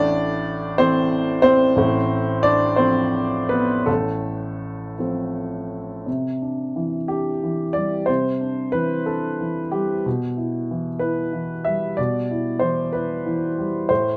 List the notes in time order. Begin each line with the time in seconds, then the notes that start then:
Already playing: A1 A2 D4 D5
0.78 E3 A3 C4 C5
1.42 C4 C5
1.76 A1 A2
2.43 D4 D5
2.76 F3 A3 C4 C5
3.49 B3 B4
3.86 A1 A2 A3 A4
4.99 F3 A3 C4
6.06 C3
6.42 D4
6.76 E3
7.08 D4 G4
7.43 E3
7.73 G3 D5
8.06 C3 C5
8.41 D4
8.72 E3 B4
9.06 D4 A4
9.41 E3
9.71 G3 G4
10.06 B2
10.37 E4
10.71 E3
10.99 E4 B4
11.33 E3
11.65 G3 E5
11.97 B2 D5
12.31 E4
12.59 E3 C5
12.93 E4 B4
13.26 E3
13.58 G3
13.89 A2 C5